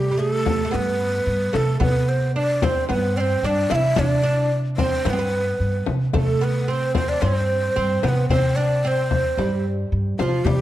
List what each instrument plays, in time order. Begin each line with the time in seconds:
Already playing: upright bass C3, oud G3, ney G4
0.11 oud G3
0.17 oud A3, ney G#4
0.31 ney A4
0.46 frame drum
0.65 oud A3
0.71 upright bass G2, oud B3, ney B4, frame drum
1.26 upright bass G2
1.53 upright bass C3, oud A3, ney A4, frame drum
1.80 upright bass C3, oud B3, ney B4, frame drum
2.08 ney C5
2.36 oud D4, ney D5
2.62 oud C4, ney C5, frame drum
2.89 upright bass G2, oud B3, ney B4, frame drum
3.17 oud C4, ney C5 D5
3.43 upright bass G2, oud D4, ney D5
3.70 upright bass C3, oud E4, ney F5, frame drum
3.75 ney E5
3.96 upright bass C3, oud D4, ney D5, frame drum
4.23 oud D4
4.77 oud C4, ney C5, frame drum
5.05 upright bass G2, oud B3, ney C5, frame drum
5.10 oud C4, ney B4
5.19 oud B3
5.60 upright bass G2
5.86 upright bass C3, frame drum
6.13 upright bass C3, oud A3, frame drum
6.18 ney A4
6.41 oud B3, ney B4
6.68 oud C4, ney C5
6.95 oud C4, ney C5, frame drum
7.09 ney D5
7.22 upright bass G2, oud C4, ney C5, frame drum
7.76 upright bass G2, oud C4
8.03 upright bass C3, oud B3, ney C5, frame drum
8.08 ney B4
8.29 upright bass C3, oud C4, ney C5, frame drum
8.56 oud D4, ney D5
8.84 oud C4, ney C5 D5
9.11 frame drum
9.37 upright bass G2, oud G3, frame drum
9.92 upright bass G2
10.18 upright bass C3, oud F3, ney G4, frame drum
10.22 ney F4
10.45 upright bass C3, oud G3, ney G4, frame drum